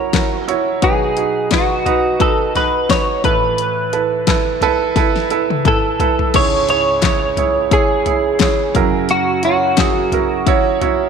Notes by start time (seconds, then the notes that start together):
Already playing: F#2 C#3 E4 F#4 A#4 C#5 A#5
0.13 E4 F#4 A#4, kick, snare, clap, closed hi-hat
0.48 E4 F#4 C#5, closed hi-hat
0.82 B2 F#3 D#4 F#4 G#4 B4, kick, closed hi-hat
1.17 D#4 F#4 G#4, closed hi-hat
1.51 D#4 F#4 B4, kick, snare, clap, closed hi-hat
1.86 D#4 F#4 B4, closed hi-hat, floor tom
2.20 D#4 F#4 A4 B4, kick, closed hi-hat
2.55 D#4 F#4 B4, snare, closed hi-hat, floor tom
2.90 D#4 F#4 B4 C#5, kick, snare, clap, closed hi-hat
3.24 A2 E3 E4 A4 B4, kick, closed hi-hat
3.58 closed hi-hat
3.93 E4 A4 B4, closed hi-hat
4.27 E4 A4 B4, kick, snare, clap, closed hi-hat
4.61 E4 A4 B4, closed hi-hat, floor tom
4.96 E4 A4 B4, kick, snare, closed hi-hat
5.16 snare
5.30 E4 A4 B4, closed hi-hat
5.50 high tom
5.65 E4 A4 B4, kick, closed hi-hat, mid tom
6.00 E4 A4 B4, closed hi-hat, floor tom
6.19 floor tom
6.34 C#2 G#2 E4 G#4 C#5, kick, closed hi-hat, crash
6.69 E4 G#4 C#5, closed hi-hat
7.02 E4 G#4 C#5, kick, snare, clap, closed hi-hat
7.37 E4 G#4 C#5, closed hi-hat, floor tom
7.71 E4 G#4 C#5, kick, closed hi-hat
8.06 E4 G#4 C#5, closed hi-hat, floor tom
8.40 E4 G#4 C#5, kick, snare, clap, closed hi-hat
8.75 F#2 C#3 E4 F#4 A#4, kick, closed hi-hat
9.09 F#4, closed hi-hat
9.43 E4 F#4 C#5, closed hi-hat
9.77 E4 F#4 G#4, kick, snare, clap, closed hi-hat
10.12 E4 F#4 A#4, closed hi-hat, floor tom
10.47 E4 F#4 C#5, kick, closed hi-hat
10.81 E4 F#4 C#5, closed hi-hat, floor tom